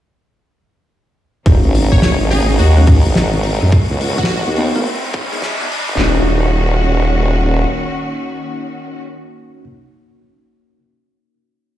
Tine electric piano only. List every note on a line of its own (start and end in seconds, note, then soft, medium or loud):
1.46 2.29 A#3 medium
1.46 2.29 C#4 medium
1.46 2.29 D#4 medium
1.46 2.29 F#4 loud
2.31 2.40 A#3 medium
2.31 2.40 C#4 medium
2.31 2.40 D#4 medium
2.31 2.40 F#4 medium
2.49 2.58 A#3 medium
2.49 2.58 C#4 medium
2.49 2.58 D#4 medium
2.49 2.58 F#4 medium
2.77 2.83 G#3 medium
2.77 2.83 C#4 medium
2.77 2.83 D#4 medium
2.77 2.83 F#4 loud
2.87 2.97 G#3 medium
2.87 2.97 C#4 medium
2.87 2.97 D#4 medium
2.87 2.97 F#4 loud
3.72 3.82 A#3 medium
3.72 3.82 B3 medium
3.72 3.82 D#4 medium
3.72 3.82 F#4 medium
4.58 4.72 A#3 medium
4.58 4.72 B3 medium
4.58 4.72 D#4 medium
4.58 4.72 F#4 medium
4.75 4.81 A#3 medium
4.75 4.81 B3 medium
4.75 4.81 D#4 medium
4.75 4.81 A#4 medium
5.32 5.41 G#3 medium
5.32 5.41 B3 medium
5.32 5.41 D#4 medium
5.32 5.41 G#4 medium
5.61 5.66 G#3 medium
5.61 5.66 B3 medium
5.61 5.66 D#4 medium
5.61 5.66 F#4 medium
6.00 9.64 A#3 medium
6.00 9.64 C#4 medium
6.00 9.64 D#4 medium
6.00 9.64 F#4 loud